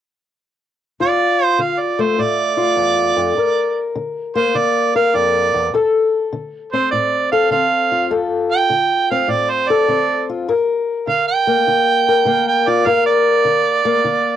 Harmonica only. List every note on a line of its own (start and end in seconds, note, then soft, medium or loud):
1.02 1.44 D5 medium
1.44 1.63 C5 medium
1.61 1.81 F5 medium
1.80 2.03 D5 medium
2.02 2.23 C5 medium
2.21 3.93 D5 medium
4.37 4.59 C5 medium
4.57 4.94 D5 medium
4.96 5.17 F5 medium
5.15 5.72 D5 medium
6.72 6.90 C5 medium
6.91 7.30 D5 medium
7.32 7.51 F5 medium
7.51 8.09 F5 medium
8.52 9.09 G5 loud
9.11 9.32 F5 medium
9.30 9.52 D5 medium
9.50 9.71 C5 medium
9.69 10.27 D5 medium
11.09 11.27 F5 medium
11.28 12.42 G5 loud
12.47 12.70 G5 medium
12.69 12.88 D5 medium
12.87 13.05 F5 medium
13.06 14.37 D5 loud